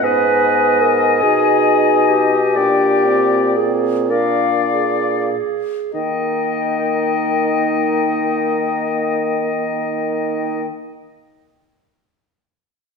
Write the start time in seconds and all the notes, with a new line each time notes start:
0.02 G#2 B3 B4 D#5 G#5
0.82 A#4
1.23 B2 D#4 G#4
2.09 G4
2.56 A#2 D4 D5 G5
3.06 C4
3.57 C4 G#4
4.10 D4 A#4 D5 F5
4.69 G#4
5.94 D#3 A#3 D#4 D#5 G5